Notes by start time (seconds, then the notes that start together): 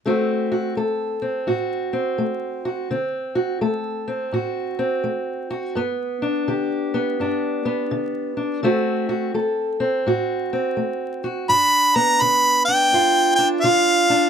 0.06 D3 A3 C4 F#4
0.52 F#4
0.77 A3 A4
1.22 C4
1.47 A2 F#4
1.93 C4
2.18 A3
2.65 F#4
2.91 D3 C4
3.35 F#4
3.61 A3 A4
4.08 C4
4.32 A2 F#4
4.79 C4
5.04 A3
5.50 F#4
5.75 G2 B3
6.22 D4
6.48 D3 G4
6.94 B3
7.20 G2 D4
7.65 B3
7.91 D3
8.37 D4
8.63 D3 A3 C4 F#4
9.09 F#4
9.34 A3 A4
9.80 C4
10.07 A2 F#4
10.53 C4
10.77 A3
11.24 F#4
11.49 G2 D4 B5
11.96 B3 A#5
12.22 D3 B5
12.65 D4 G5
12.93 G2 F4
13.36 D4 G5
13.61 D3 F4 F5
14.10 D4